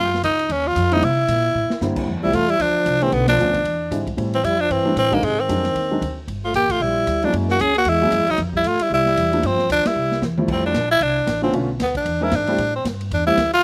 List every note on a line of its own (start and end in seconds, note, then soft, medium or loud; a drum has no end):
0.00 0.22 F#2 medium
0.00 0.22 F4 medium
0.06 snare soft
0.14 snare soft
0.23 0.49 C#2 medium
0.23 0.53 D#4 medium
0.23 kick soft
0.23 hi-hat pedal medium
0.23 ride medium
0.39 ride soft
0.49 0.75 D#2 medium
0.49 0.69 C#4 medium
0.49 kick soft
0.49 ride medium
0.67 0.94 F4 medium
0.76 1.01 F2 medium
0.76 kick soft
0.76 hi-hat pedal medium
0.76 ride medium
0.92 1.01 D3 medium
0.92 1.01 G3 medium
0.92 1.02 A#3 medium
0.92 1.01 C4 medium
0.92 1.05 D#4 medium
0.92 1.02 E4 medium
0.92 ride soft
1.02 1.28 C3 medium
1.02 1.97 E4 medium
1.02 kick soft
1.02 ride medium
1.28 1.54 A#2 medium
1.28 kick soft
1.28 hi-hat pedal medium
1.28 ride medium
1.55 1.69 A2 medium
1.70 muted upright bass stroke soft
1.70 snare medium
1.81 2.06 G2 medium
1.81 2.08 D3 medium
1.81 2.08 G3 medium
1.81 2.08 A#3 medium
1.81 2.08 C4 medium
1.81 2.08 E4 medium
1.81 snare medium
1.81 hi-hat pedal medium
1.96 kick medium
1.96 crash medium
2.07 2.16 F2 medium
2.07 kick soft
2.16 2.24 E2 medium
2.23 2.32 C2 medium
2.23 2.32 F3 medium
2.23 2.35 G3 medium
2.23 2.33 G3 medium
2.23 2.33 A3 medium
2.23 2.33 C4 medium
2.23 2.36 E4 medium
2.23 2.33 E4 medium
2.33 2.59 E2 medium
2.33 2.50 A3 medium
2.33 2.52 F4 loud
2.33 kick soft
2.33 hi-hat pedal soft
2.33 ride medium
2.49 2.61 G3 medium
2.49 2.62 E4 medium
2.49 ride soft
2.59 2.85 D2 medium
2.59 3.03 F3 medium
2.59 3.04 D4 medium
2.59 kick soft
2.59 ride medium
2.86 3.11 C2 medium
2.86 kick soft
2.86 hi-hat pedal medium
2.86 ride medium
3.01 3.11 D3 medium
3.01 3.15 E3 medium
3.01 3.11 A3 medium
3.01 3.11 B3 medium
3.01 3.14 C4 medium
3.01 3.12 C#4 medium
3.01 3.12 G4 medium
3.01 ride soft
3.12 3.38 B1 medium
3.12 3.29 D3 medium
3.12 3.28 B3 medium
3.12 kick soft
3.12 ride medium
3.28 3.63 F3 medium
3.28 4.03 D4 medium
3.28 snare medium
3.28 ride medium
3.38 3.64 D2 medium
3.38 3.53 D3 medium
3.38 3.53 A3 medium
3.38 3.53 B3 medium
3.38 3.53 C#4 medium
3.38 3.53 F4 medium
3.38 hi-hat pedal medium
3.54 kick soft
3.54 ride soft
3.65 3.90 E2 medium
3.65 kick soft
3.65 ride medium
3.91 4.16 G#2 medium
3.91 4.05 D3 medium
3.91 4.05 G3 medium
3.91 4.05 G#3 medium
3.91 4.05 C4 medium
3.91 4.06 E4 medium
3.91 kick soft
3.91 hi-hat pedal medium
3.91 ride medium
4.07 kick medium
4.07 ride soft
4.17 4.43 A2 medium
4.17 4.31 E3 medium
4.17 4.31 G3 medium
4.17 4.31 A3 medium
4.17 4.32 C4 medium
4.17 4.32 E4 medium
4.17 ride medium
4.34 4.46 E3 medium
4.34 4.46 C4 medium
4.34 ride soft
4.44 4.69 F2 medium
4.44 4.62 G3 medium
4.44 4.62 E4 medium
4.44 kick soft
4.44 hi-hat pedal medium
4.44 ride medium
4.60 4.72 F3 medium
4.60 4.73 D4 medium
4.70 4.96 G2 medium
4.70 4.96 E3 medium
4.70 4.97 C4 medium
4.70 kick soft
4.70 ride medium
4.85 4.95 E3 medium
4.85 4.95 G3 medium
4.85 4.95 A3 medium
4.85 4.95 C4 medium
4.85 4.95 D4 medium
4.96 5.22 A2 medium
4.96 5.15 E3 medium
4.96 5.15 C4 medium
4.96 kick soft
4.96 hi-hat pedal medium
4.96 ride medium
5.11 5.26 D3 medium
5.11 5.21 D#3 medium
5.11 5.21 F#3 medium
5.11 5.21 G#3 medium
5.11 5.26 A#3 medium
5.11 5.22 C4 medium
5.11 5.22 D4 medium
5.11 kick medium
5.11 ride soft
5.23 5.48 G#2 medium
5.23 5.42 C3 medium
5.23 5.41 G#3 medium
5.23 ride medium
5.40 6.18 D#3 medium
5.40 6.18 C4 medium
5.49 5.74 F2 medium
5.49 5.63 D#3 medium
5.49 5.63 F#3 medium
5.49 5.63 G#3 medium
5.49 5.63 C4 medium
5.49 5.63 D4 medium
5.49 kick soft
5.49 hi-hat pedal medium
5.49 ride medium
5.64 snare soft
5.64 ride soft
5.75 6.00 D#2 medium
5.75 kick soft
5.75 ride medium
5.91 6.01 D#3 medium
5.91 6.00 F#3 medium
5.91 6.01 G#3 medium
5.91 6.01 C4 medium
5.91 6.01 D4 medium
6.01 6.27 D2 medium
6.01 kick soft
6.01 hi-hat pedal soft
6.01 ride medium
6.28 6.53 G1 medium
6.28 kick soft
6.28 ride medium
6.44 6.54 A3 medium
6.44 6.54 F4 medium
6.54 6.79 A1 medium
6.54 6.72 A#3 medium
6.54 6.73 G4 medium
6.54 kick soft
6.54 hi-hat pedal medium
6.54 ride medium
6.70 6.83 A3 medium
6.70 6.84 F4 medium
6.70 kick medium
6.70 ride medium
6.80 7.06 A#1 medium
6.80 7.25 G3 medium
6.80 7.26 E4 medium
6.80 kick soft
7.07 7.32 D2 medium
7.07 kick soft
7.07 hi-hat pedal soft
7.07 ride medium
7.22 7.33 F3 medium
7.22 7.58 F#3 medium
7.22 7.58 G#3 medium
7.22 7.58 A#3 medium
7.22 7.58 C#4 medium
7.22 7.34 D4 medium
7.22 7.58 E4 medium
7.22 ride soft
7.33 7.58 F#2 medium
7.33 kick soft
7.33 ride medium
7.49 7.63 A#3 medium
7.49 7.62 F#4 medium
7.49 snare soft
7.59 7.84 C#2 medium
7.59 7.76 C#4 medium
7.59 7.75 G#4 loud
7.59 kick soft
7.59 hi-hat pedal medium
7.59 ride medium
7.74 7.88 A#3 medium
7.74 7.91 F#4 loud
7.74 ride soft
7.85 8.11 E2 medium
7.85 8.30 G#3 medium
7.85 kick soft
7.85 ride medium
7.89 8.32 E4 loud
8.02 8.11 F#3 medium
8.02 8.11 G#3 medium
8.02 8.11 A#3 medium
8.02 8.11 C#4 medium
8.02 8.12 E4 medium
8.12 8.20 F#2 medium
8.12 kick soft
8.12 hi-hat pedal medium
8.12 ride medium
8.20 8.29 E2 medium
8.27 8.37 C#2 medium
8.27 8.38 F#3 medium
8.27 8.39 D#4 medium
8.27 ride soft
8.37 8.63 F2 medium
8.37 kick soft
8.37 snare soft
8.37 ride medium
8.53 8.68 G3 medium
8.53 8.69 E4 medium
8.53 kick medium
8.64 8.79 G2 medium
8.64 8.83 A3 medium
8.64 8.84 F4 medium
8.64 kick soft
8.64 hi-hat pedal medium
8.64 ride medium
8.79 8.91 G3 medium
8.79 8.92 E4 medium
8.79 muted upright bass stroke soft
8.79 ride medium
8.90 9.16 C2 medium
8.90 9.46 G3 medium
8.90 9.47 E4 medium
8.90 kick soft
9.06 snare soft
9.17 9.42 E2 medium
9.17 kick soft
9.17 hi-hat pedal medium
9.17 ride medium
9.32 9.42 F3 medium
9.32 9.42 G3 medium
9.32 9.42 A3 medium
9.32 9.42 A#3 medium
9.32 9.42 D4 medium
9.32 ride soft
9.43 9.69 G2 medium
9.43 9.70 F3 medium
9.43 9.71 C4 medium
9.43 kick soft
9.43 ride medium
9.59 snare soft
9.69 9.84 D2 medium
9.69 9.88 F3 medium
9.69 9.88 D4 medium
9.69 kick soft
9.69 hi-hat pedal medium
9.69 ride medium
9.85 10.23 G3 medium
9.85 10.23 E4 medium
9.85 muted upright bass stroke soft
9.85 snare medium
9.85 ride medium
9.96 10.21 C2 medium
10.12 snare medium
10.22 10.47 E2 medium
10.22 snare medium
10.22 hi-hat pedal medium
10.38 10.73 F3 medium
10.38 10.73 G3 medium
10.38 10.73 A3 medium
10.38 10.73 C4 medium
10.38 10.73 E4 medium
10.38 mid tom medium
10.48 10.74 F2 medium
10.48 10.64 C4 medium
10.48 kick medium
10.48 crash medium
10.66 10.89 D4 medium
10.74 11.00 A#1 medium
10.74 kick soft
10.74 snare medium
10.74 hi-hat pedal soft
10.74 ride medium
10.91 11.04 E4 loud
11.00 11.26 C2 medium
11.00 11.43 D4 medium
11.00 kick soft
11.00 ride medium
11.27 11.52 A1 medium
11.27 kick soft
11.27 snare medium
11.27 hi-hat pedal medium
11.27 ride medium
11.42 11.52 D3 medium
11.42 11.52 A3 medium
11.42 11.53 B3 medium
11.42 11.53 C4 medium
11.42 11.52 C#4 medium
11.42 11.53 F4 medium
11.53 11.79 B1 medium
11.53 11.67 D3 medium
11.53 11.67 A3 medium
11.53 11.68 B3 medium
11.53 11.68 C#4 medium
11.53 11.68 F4 medium
11.53 kick soft
11.53 ride medium
11.79 12.05 D2 medium
11.79 11.95 B3 medium
11.79 kick soft
11.79 snare medium
11.79 hi-hat pedal soft
11.79 ride medium
11.95 12.24 D4 medium
11.95 kick medium
11.95 ride soft
12.05 12.31 E2 medium
12.05 kick soft
12.05 ride medium
12.21 12.31 E3 medium
12.21 12.31 G#3 medium
12.21 12.31 C4 medium
12.21 12.31 D4 medium
12.21 12.37 E4 loud
12.21 12.31 A#4 medium
12.31 12.57 G#2 medium
12.31 12.75 D4 medium
12.31 kick soft
12.31 snare medium
12.31 hi-hat pedal medium
12.31 ride medium
12.47 12.57 G3 medium
12.47 12.57 A3 medium
12.47 12.58 C4 medium
12.47 12.58 E4 medium
12.47 12.58 G4 medium
12.47 ride soft
12.58 12.84 A2 medium
12.58 kick soft
12.58 ride medium
12.75 12.85 C4 medium
12.85 13.10 G2 medium
12.85 kick soft
12.85 snare medium
12.85 hi-hat pedal medium
12.85 ride medium
13.01 ride soft
13.11 13.36 E2 medium
13.11 13.26 D4 medium
13.11 kick soft
13.11 ride medium
13.26 13.36 G3 medium
13.26 13.36 A3 medium
13.26 13.36 C4 medium
13.26 13.51 E4 medium
13.26 13.36 E4 medium
13.26 13.36 G4 medium
13.37 13.62 D2 medium
13.37 kick soft
13.37 snare medium
13.37 hi-hat pedal soft
13.37 ride medium
13.53 13.63 F4 loud
13.53 ride soft